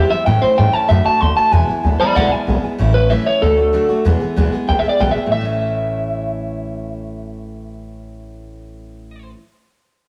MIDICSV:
0, 0, Header, 1, 5, 480
1, 0, Start_track
1, 0, Key_signature, 3, "major"
1, 0, Tempo, 316122
1, 402, Time_signature, 4, 2, 24, 8
1, 15307, End_track
2, 0, Start_track
2, 0, Title_t, "Clean electric guitar"
2, 0, Program_c, 0, 27
2, 0, Note_on_c, 0, 67, 99
2, 156, Note_off_c, 0, 67, 0
2, 158, Note_on_c, 0, 76, 109
2, 393, Note_off_c, 0, 76, 0
2, 399, Note_on_c, 0, 79, 99
2, 633, Note_off_c, 0, 79, 0
2, 634, Note_on_c, 0, 72, 102
2, 870, Note_off_c, 0, 72, 0
2, 879, Note_on_c, 0, 79, 110
2, 1115, Note_off_c, 0, 79, 0
2, 1115, Note_on_c, 0, 81, 93
2, 1347, Note_on_c, 0, 76, 102
2, 1350, Note_off_c, 0, 81, 0
2, 1586, Note_off_c, 0, 76, 0
2, 1603, Note_on_c, 0, 81, 101
2, 1834, Note_off_c, 0, 81, 0
2, 1834, Note_on_c, 0, 84, 96
2, 2069, Note_off_c, 0, 84, 0
2, 2075, Note_on_c, 0, 81, 104
2, 2306, Note_off_c, 0, 81, 0
2, 2306, Note_on_c, 0, 80, 109
2, 2777, Note_off_c, 0, 80, 0
2, 3031, Note_on_c, 0, 74, 97
2, 3045, Note_on_c, 0, 83, 102
2, 3248, Note_off_c, 0, 74, 0
2, 3266, Note_on_c, 0, 74, 98
2, 3274, Note_off_c, 0, 83, 0
2, 3284, Note_on_c, 0, 78, 106
2, 3494, Note_off_c, 0, 74, 0
2, 3521, Note_off_c, 0, 78, 0
2, 3521, Note_on_c, 0, 80, 100
2, 3984, Note_off_c, 0, 80, 0
2, 4466, Note_on_c, 0, 71, 104
2, 4703, Note_off_c, 0, 71, 0
2, 4706, Note_on_c, 0, 76, 89
2, 4943, Note_off_c, 0, 76, 0
2, 4956, Note_on_c, 0, 73, 96
2, 5189, Note_off_c, 0, 73, 0
2, 5193, Note_on_c, 0, 69, 99
2, 6125, Note_off_c, 0, 69, 0
2, 7117, Note_on_c, 0, 79, 99
2, 7271, Note_off_c, 0, 79, 0
2, 7275, Note_on_c, 0, 76, 99
2, 7422, Note_off_c, 0, 76, 0
2, 7428, Note_on_c, 0, 74, 99
2, 7587, Note_off_c, 0, 74, 0
2, 7600, Note_on_c, 0, 79, 85
2, 7753, Note_off_c, 0, 79, 0
2, 7764, Note_on_c, 0, 76, 92
2, 8058, Note_off_c, 0, 76, 0
2, 8076, Note_on_c, 0, 76, 108
2, 14137, Note_off_c, 0, 76, 0
2, 15307, End_track
3, 0, Start_track
3, 0, Title_t, "Steel-string acoustic guitar"
3, 0, Program_c, 1, 25
3, 0, Note_on_c, 1, 52, 62
3, 0, Note_on_c, 1, 56, 71
3, 0, Note_on_c, 1, 59, 72
3, 151, Note_on_c, 1, 64, 57
3, 152, Note_off_c, 1, 59, 0
3, 160, Note_off_c, 1, 52, 0
3, 167, Note_off_c, 1, 56, 0
3, 170, Note_on_c, 1, 59, 51
3, 185, Note_on_c, 1, 56, 55
3, 197, Note_on_c, 1, 52, 44
3, 386, Note_off_c, 1, 52, 0
3, 395, Note_on_c, 1, 45, 83
3, 396, Note_off_c, 1, 64, 0
3, 404, Note_on_c, 1, 52, 85
3, 405, Note_off_c, 1, 56, 0
3, 406, Note_off_c, 1, 59, 0
3, 411, Note_on_c, 1, 57, 88
3, 419, Note_on_c, 1, 61, 92
3, 429, Note_on_c, 1, 64, 85
3, 613, Note_off_c, 1, 64, 0
3, 632, Note_on_c, 1, 64, 63
3, 637, Note_off_c, 1, 61, 0
3, 638, Note_off_c, 1, 45, 0
3, 643, Note_off_c, 1, 52, 0
3, 646, Note_off_c, 1, 57, 0
3, 656, Note_on_c, 1, 61, 57
3, 674, Note_on_c, 1, 57, 54
3, 861, Note_off_c, 1, 57, 0
3, 863, Note_on_c, 1, 52, 67
3, 876, Note_off_c, 1, 64, 0
3, 878, Note_off_c, 1, 61, 0
3, 879, Note_on_c, 1, 57, 71
3, 896, Note_on_c, 1, 61, 65
3, 911, Note_on_c, 1, 64, 74
3, 1091, Note_off_c, 1, 64, 0
3, 1109, Note_on_c, 1, 64, 57
3, 1112, Note_off_c, 1, 52, 0
3, 1115, Note_off_c, 1, 61, 0
3, 1120, Note_off_c, 1, 57, 0
3, 1134, Note_on_c, 1, 61, 50
3, 1154, Note_on_c, 1, 57, 47
3, 1341, Note_off_c, 1, 57, 0
3, 1347, Note_on_c, 1, 50, 82
3, 1355, Note_off_c, 1, 64, 0
3, 1359, Note_on_c, 1, 57, 81
3, 1364, Note_off_c, 1, 61, 0
3, 1370, Note_on_c, 1, 62, 91
3, 1383, Note_on_c, 1, 66, 94
3, 1564, Note_off_c, 1, 66, 0
3, 1582, Note_on_c, 1, 66, 57
3, 1587, Note_off_c, 1, 62, 0
3, 1593, Note_off_c, 1, 50, 0
3, 1599, Note_off_c, 1, 57, 0
3, 1605, Note_on_c, 1, 62, 59
3, 1625, Note_on_c, 1, 57, 45
3, 1822, Note_off_c, 1, 57, 0
3, 1822, Note_on_c, 1, 50, 63
3, 1831, Note_off_c, 1, 66, 0
3, 1838, Note_off_c, 1, 62, 0
3, 1840, Note_on_c, 1, 57, 68
3, 1856, Note_on_c, 1, 62, 74
3, 1868, Note_on_c, 1, 66, 71
3, 2041, Note_off_c, 1, 66, 0
3, 2059, Note_on_c, 1, 66, 57
3, 2067, Note_off_c, 1, 62, 0
3, 2070, Note_off_c, 1, 50, 0
3, 2080, Note_off_c, 1, 57, 0
3, 2085, Note_on_c, 1, 62, 48
3, 2104, Note_on_c, 1, 57, 48
3, 2298, Note_on_c, 1, 40, 76
3, 2306, Note_on_c, 1, 47, 77
3, 2309, Note_off_c, 1, 66, 0
3, 2312, Note_on_c, 1, 52, 87
3, 2313, Note_off_c, 1, 57, 0
3, 2318, Note_off_c, 1, 62, 0
3, 2319, Note_on_c, 1, 56, 87
3, 2325, Note_on_c, 1, 59, 82
3, 2329, Note_on_c, 1, 64, 92
3, 2521, Note_off_c, 1, 64, 0
3, 2539, Note_on_c, 1, 64, 52
3, 2540, Note_off_c, 1, 59, 0
3, 2548, Note_off_c, 1, 40, 0
3, 2552, Note_off_c, 1, 47, 0
3, 2553, Note_off_c, 1, 56, 0
3, 2555, Note_off_c, 1, 52, 0
3, 2558, Note_on_c, 1, 59, 56
3, 2571, Note_on_c, 1, 56, 48
3, 2586, Note_on_c, 1, 52, 50
3, 2766, Note_off_c, 1, 52, 0
3, 2785, Note_on_c, 1, 52, 61
3, 2786, Note_off_c, 1, 56, 0
3, 2788, Note_off_c, 1, 64, 0
3, 2798, Note_off_c, 1, 59, 0
3, 2804, Note_on_c, 1, 56, 57
3, 2821, Note_on_c, 1, 59, 68
3, 2830, Note_on_c, 1, 64, 67
3, 3006, Note_off_c, 1, 64, 0
3, 3024, Note_off_c, 1, 59, 0
3, 3024, Note_on_c, 1, 64, 54
3, 3031, Note_off_c, 1, 52, 0
3, 3041, Note_off_c, 1, 56, 0
3, 3043, Note_on_c, 1, 59, 48
3, 3058, Note_on_c, 1, 56, 49
3, 3072, Note_on_c, 1, 52, 41
3, 3267, Note_off_c, 1, 52, 0
3, 3270, Note_on_c, 1, 40, 88
3, 3271, Note_off_c, 1, 64, 0
3, 3274, Note_off_c, 1, 56, 0
3, 3276, Note_on_c, 1, 47, 88
3, 3280, Note_off_c, 1, 59, 0
3, 3285, Note_on_c, 1, 52, 96
3, 3292, Note_on_c, 1, 56, 86
3, 3297, Note_on_c, 1, 59, 98
3, 3303, Note_on_c, 1, 64, 97
3, 3487, Note_off_c, 1, 64, 0
3, 3505, Note_on_c, 1, 64, 59
3, 3506, Note_off_c, 1, 59, 0
3, 3513, Note_off_c, 1, 40, 0
3, 3516, Note_off_c, 1, 47, 0
3, 3521, Note_off_c, 1, 52, 0
3, 3524, Note_off_c, 1, 56, 0
3, 3525, Note_on_c, 1, 59, 50
3, 3540, Note_on_c, 1, 56, 54
3, 3549, Note_on_c, 1, 52, 51
3, 3730, Note_off_c, 1, 52, 0
3, 3749, Note_on_c, 1, 52, 63
3, 3750, Note_off_c, 1, 56, 0
3, 3751, Note_off_c, 1, 64, 0
3, 3760, Note_off_c, 1, 59, 0
3, 3768, Note_on_c, 1, 56, 69
3, 3787, Note_on_c, 1, 59, 69
3, 3797, Note_on_c, 1, 64, 65
3, 3968, Note_off_c, 1, 64, 0
3, 3984, Note_off_c, 1, 59, 0
3, 3986, Note_on_c, 1, 64, 52
3, 3992, Note_off_c, 1, 52, 0
3, 3996, Note_off_c, 1, 56, 0
3, 4002, Note_on_c, 1, 59, 46
3, 4015, Note_on_c, 1, 56, 50
3, 4030, Note_on_c, 1, 52, 41
3, 4219, Note_off_c, 1, 52, 0
3, 4228, Note_on_c, 1, 45, 97
3, 4231, Note_off_c, 1, 64, 0
3, 4238, Note_on_c, 1, 52, 88
3, 4239, Note_off_c, 1, 56, 0
3, 4239, Note_off_c, 1, 59, 0
3, 4245, Note_on_c, 1, 57, 85
3, 4253, Note_on_c, 1, 61, 91
3, 4261, Note_on_c, 1, 64, 97
3, 4448, Note_off_c, 1, 64, 0
3, 4467, Note_on_c, 1, 64, 52
3, 4470, Note_off_c, 1, 61, 0
3, 4472, Note_off_c, 1, 45, 0
3, 4477, Note_off_c, 1, 52, 0
3, 4480, Note_off_c, 1, 57, 0
3, 4489, Note_on_c, 1, 61, 51
3, 4513, Note_on_c, 1, 57, 50
3, 4704, Note_off_c, 1, 57, 0
3, 4707, Note_on_c, 1, 45, 75
3, 4711, Note_off_c, 1, 64, 0
3, 4714, Note_off_c, 1, 61, 0
3, 4715, Note_on_c, 1, 52, 79
3, 4722, Note_on_c, 1, 57, 87
3, 4732, Note_on_c, 1, 61, 80
3, 4739, Note_on_c, 1, 64, 86
3, 4920, Note_off_c, 1, 64, 0
3, 4938, Note_on_c, 1, 64, 56
3, 4946, Note_off_c, 1, 61, 0
3, 4951, Note_off_c, 1, 45, 0
3, 4955, Note_off_c, 1, 52, 0
3, 4959, Note_off_c, 1, 57, 0
3, 4965, Note_on_c, 1, 61, 47
3, 4989, Note_on_c, 1, 57, 46
3, 5178, Note_off_c, 1, 57, 0
3, 5178, Note_on_c, 1, 50, 65
3, 5187, Note_off_c, 1, 64, 0
3, 5196, Note_on_c, 1, 57, 63
3, 5200, Note_off_c, 1, 61, 0
3, 5210, Note_on_c, 1, 62, 63
3, 5223, Note_on_c, 1, 66, 68
3, 5407, Note_off_c, 1, 66, 0
3, 5425, Note_on_c, 1, 66, 59
3, 5427, Note_off_c, 1, 50, 0
3, 5430, Note_off_c, 1, 62, 0
3, 5436, Note_off_c, 1, 57, 0
3, 5448, Note_on_c, 1, 62, 54
3, 5469, Note_on_c, 1, 57, 52
3, 5653, Note_off_c, 1, 57, 0
3, 5660, Note_on_c, 1, 50, 82
3, 5663, Note_off_c, 1, 62, 0
3, 5670, Note_off_c, 1, 66, 0
3, 5671, Note_on_c, 1, 57, 79
3, 5681, Note_on_c, 1, 62, 93
3, 5692, Note_on_c, 1, 66, 96
3, 5882, Note_off_c, 1, 66, 0
3, 5901, Note_on_c, 1, 66, 61
3, 5904, Note_off_c, 1, 62, 0
3, 5908, Note_off_c, 1, 50, 0
3, 5913, Note_off_c, 1, 57, 0
3, 5922, Note_on_c, 1, 62, 59
3, 5944, Note_on_c, 1, 57, 50
3, 6142, Note_on_c, 1, 40, 81
3, 6148, Note_off_c, 1, 66, 0
3, 6149, Note_on_c, 1, 47, 101
3, 6155, Note_off_c, 1, 57, 0
3, 6156, Note_on_c, 1, 52, 99
3, 6159, Note_off_c, 1, 62, 0
3, 6162, Note_on_c, 1, 56, 92
3, 6168, Note_on_c, 1, 59, 98
3, 6172, Note_on_c, 1, 68, 105
3, 6358, Note_off_c, 1, 68, 0
3, 6376, Note_on_c, 1, 68, 62
3, 6377, Note_off_c, 1, 59, 0
3, 6389, Note_off_c, 1, 40, 0
3, 6391, Note_off_c, 1, 56, 0
3, 6392, Note_off_c, 1, 47, 0
3, 6395, Note_on_c, 1, 59, 65
3, 6396, Note_off_c, 1, 52, 0
3, 6409, Note_on_c, 1, 56, 54
3, 6422, Note_on_c, 1, 52, 51
3, 6622, Note_off_c, 1, 52, 0
3, 6625, Note_off_c, 1, 56, 0
3, 6626, Note_off_c, 1, 68, 0
3, 6626, Note_on_c, 1, 40, 88
3, 6632, Note_on_c, 1, 47, 89
3, 6635, Note_off_c, 1, 59, 0
3, 6640, Note_on_c, 1, 52, 85
3, 6643, Note_on_c, 1, 56, 91
3, 6652, Note_on_c, 1, 59, 93
3, 6658, Note_on_c, 1, 68, 97
3, 6846, Note_off_c, 1, 68, 0
3, 6864, Note_on_c, 1, 68, 62
3, 6865, Note_off_c, 1, 59, 0
3, 6871, Note_off_c, 1, 40, 0
3, 6874, Note_off_c, 1, 47, 0
3, 6878, Note_off_c, 1, 52, 0
3, 6880, Note_off_c, 1, 56, 0
3, 6883, Note_on_c, 1, 59, 62
3, 6900, Note_on_c, 1, 56, 51
3, 6913, Note_on_c, 1, 52, 54
3, 7082, Note_off_c, 1, 52, 0
3, 7100, Note_off_c, 1, 56, 0
3, 7100, Note_on_c, 1, 52, 59
3, 7110, Note_off_c, 1, 68, 0
3, 7114, Note_off_c, 1, 59, 0
3, 7118, Note_on_c, 1, 56, 71
3, 7132, Note_on_c, 1, 59, 63
3, 7144, Note_on_c, 1, 68, 75
3, 7325, Note_off_c, 1, 68, 0
3, 7343, Note_off_c, 1, 59, 0
3, 7343, Note_on_c, 1, 68, 54
3, 7348, Note_off_c, 1, 52, 0
3, 7357, Note_off_c, 1, 56, 0
3, 7362, Note_on_c, 1, 59, 52
3, 7374, Note_on_c, 1, 56, 50
3, 7386, Note_on_c, 1, 52, 47
3, 7578, Note_off_c, 1, 52, 0
3, 7580, Note_on_c, 1, 40, 75
3, 7585, Note_off_c, 1, 56, 0
3, 7587, Note_off_c, 1, 59, 0
3, 7590, Note_off_c, 1, 68, 0
3, 7590, Note_on_c, 1, 47, 83
3, 7597, Note_on_c, 1, 52, 80
3, 7603, Note_on_c, 1, 56, 86
3, 7605, Note_on_c, 1, 59, 93
3, 7614, Note_on_c, 1, 68, 88
3, 7809, Note_off_c, 1, 68, 0
3, 7825, Note_off_c, 1, 59, 0
3, 7827, Note_on_c, 1, 68, 55
3, 7828, Note_off_c, 1, 40, 0
3, 7833, Note_off_c, 1, 47, 0
3, 7836, Note_off_c, 1, 52, 0
3, 7840, Note_off_c, 1, 56, 0
3, 7844, Note_on_c, 1, 59, 54
3, 7860, Note_on_c, 1, 56, 52
3, 7872, Note_on_c, 1, 52, 44
3, 7992, Note_on_c, 1, 45, 81
3, 8060, Note_off_c, 1, 52, 0
3, 8072, Note_off_c, 1, 68, 0
3, 8079, Note_on_c, 1, 52, 79
3, 8080, Note_off_c, 1, 59, 0
3, 8088, Note_off_c, 1, 56, 0
3, 8154, Note_on_c, 1, 57, 80
3, 8215, Note_on_c, 1, 61, 88
3, 8279, Note_on_c, 1, 64, 88
3, 14155, Note_off_c, 1, 45, 0
3, 14199, Note_off_c, 1, 52, 0
3, 14236, Note_off_c, 1, 57, 0
3, 14267, Note_off_c, 1, 61, 0
3, 14299, Note_off_c, 1, 64, 0
3, 15307, End_track
4, 0, Start_track
4, 0, Title_t, "Upright bass"
4, 0, Program_c, 2, 32
4, 0, Note_on_c, 2, 40, 96
4, 158, Note_off_c, 2, 40, 0
4, 408, Note_on_c, 2, 45, 86
4, 638, Note_off_c, 2, 45, 0
4, 891, Note_on_c, 2, 44, 99
4, 1119, Note_off_c, 2, 44, 0
4, 1368, Note_on_c, 2, 42, 94
4, 1597, Note_off_c, 2, 42, 0
4, 1848, Note_on_c, 2, 38, 93
4, 2076, Note_off_c, 2, 38, 0
4, 2317, Note_on_c, 2, 40, 85
4, 2550, Note_off_c, 2, 40, 0
4, 2801, Note_on_c, 2, 38, 98
4, 3032, Note_off_c, 2, 38, 0
4, 3281, Note_on_c, 2, 37, 89
4, 3512, Note_off_c, 2, 37, 0
4, 3760, Note_on_c, 2, 35, 99
4, 3991, Note_off_c, 2, 35, 0
4, 4242, Note_on_c, 2, 33, 79
4, 4743, Note_off_c, 2, 33, 0
4, 5200, Note_on_c, 2, 38, 100
4, 5702, Note_off_c, 2, 38, 0
4, 6155, Note_on_c, 2, 40, 89
4, 6323, Note_off_c, 2, 40, 0
4, 6638, Note_on_c, 2, 38, 86
4, 6841, Note_off_c, 2, 38, 0
4, 7118, Note_on_c, 2, 37, 89
4, 7321, Note_off_c, 2, 37, 0
4, 7594, Note_on_c, 2, 35, 88
4, 7799, Note_off_c, 2, 35, 0
4, 8070, Note_on_c, 2, 33, 92
4, 14134, Note_off_c, 2, 33, 0
4, 15307, End_track
5, 0, Start_track
5, 0, Title_t, "Muted upright bass strokes"
5, 164, Note_on_c, 9, 29, 66
5, 316, Note_off_c, 9, 29, 0
5, 649, Note_on_c, 9, 29, 73
5, 801, Note_off_c, 9, 29, 0
5, 1132, Note_on_c, 9, 29, 76
5, 1284, Note_off_c, 9, 29, 0
5, 1609, Note_on_c, 9, 29, 80
5, 1761, Note_off_c, 9, 29, 0
5, 2085, Note_on_c, 9, 29, 69
5, 2236, Note_off_c, 9, 29, 0
5, 2557, Note_on_c, 9, 29, 79
5, 2708, Note_off_c, 9, 29, 0
5, 3045, Note_on_c, 9, 29, 72
5, 3196, Note_off_c, 9, 29, 0
5, 3523, Note_on_c, 9, 29, 75
5, 3675, Note_off_c, 9, 29, 0
5, 3998, Note_on_c, 9, 29, 64
5, 4150, Note_off_c, 9, 29, 0
5, 4952, Note_on_c, 9, 29, 78
5, 5104, Note_off_c, 9, 29, 0
5, 5917, Note_on_c, 9, 29, 72
5, 6069, Note_off_c, 9, 29, 0
5, 6397, Note_on_c, 9, 29, 69
5, 6549, Note_off_c, 9, 29, 0
5, 7362, Note_on_c, 9, 29, 73
5, 7513, Note_off_c, 9, 29, 0
5, 7838, Note_on_c, 9, 29, 72
5, 7990, Note_off_c, 9, 29, 0
5, 15307, End_track
0, 0, End_of_file